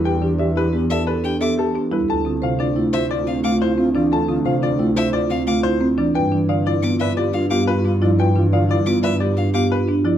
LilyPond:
<<
  \new Staff \with { instrumentName = "Violin" } { \time 6/4 \key d \dorian \tempo 4 = 177 r2 r8 e''8 r8 g''8 d'''8 r4. | r2 r8 e''8 r8 f''8 d'''8 r4. | r2 r8 e''8 r8 f''8 d'''8 r4. | r2 d'''8 e''8 r8 f''8 d'''8 r4. |
r2 d'''8 e''8 r8 f''8 d'''8 r4. | }
  \new Staff \with { instrumentName = "Grand piano" } { \time 6/4 \key d \dorian g''8 r8 e''8 b'8 r8 a'8 b'8 r8 e''8 a'8 r8 b'8 | a''8 r8 f''8 d''8 r8 c''8 d''8 r8 f''8 c''8 r8 d''8 | a''8 r8 f''8 d''8 r8 c''8 d''8 r8 f''8 c''8 r8 d''8 | g''8 r8 f''8 d''8 r8 b'8 d''8 r8 f''8 b'8 r8 d''8 |
g''8 r8 f''8 d''8 r8 b'8 d''8 r8 f''8 b'8 r8 d''8 | }
  \new Staff \with { instrumentName = "Alto flute" } { \time 6/4 \key d \dorian g'8 g'8 g'8 g'8 g'8 g'8 g'8 g'8 g'8 g'8 g'8 r8 | f'8 f'8 f'8 f'8 f'8 f'8 f'8 f'8 f'8 f'8 f'8 f'8 | f'8 f'8 f'8 f'8 f'8 f'8 f'8 f'8 f'8 f'8 f'8 r8 | f'8 f'8 f'8 f'8 f'8 f'8 f'8 f'8 f'8 f'8 f'8 f'8 |
f'8 f'8 f'8 f'8 f'8 f'8 f'8 f'8 f'8 f'8 f'8 r8 | }
  \new Staff \with { instrumentName = "Marimba" } { \time 6/4 \key d \dorian b'8 d'8 d''8 e'8 g'8 d''8 a'8 d'8 a'8 g'8 d'8 e'8 | a'8 c'8 c''8 d'8 e'8 c''8 f'8 c'8 f'8 e'8 c'8 d'8 | a'8 c'8 c''8 d'8 e'8 c''8 f'8 c'8 f'8 e'8 c'8 d'8 | b'8 d'8 d''8 e'8 f'8 d''8 g'8 d'8 g'8 f'8 d'8 e'8 |
b'8 d'8 d''8 e'8 f'8 d''8 g'8 d'8 g'8 f'8 d'8 e'8 | }
  \new Staff \with { instrumentName = "Marimba" } { \time 6/4 \key d \dorian r8 e8 r4 b8 r4. b8 r8 d'8 g8 | r8 d8 c8 r8 a8 r4. a8 r8 c'8 e8 | r8 d8 c8 r8 a8 r4. a8 r8 c'8 e8 | r8 e8 d8 r8 b8 r4. b8 r8 d'8 f8 |
r8 e8 d8 r8 b8 r4. b8 r8 d'8 f8 | }
  \new Staff \with { instrumentName = "Double bass section" } { \clef bass \time 6/4 \key d \dorian e,1. | d,1.~ | d,1. | g,1.~ |
g,1. | }
>>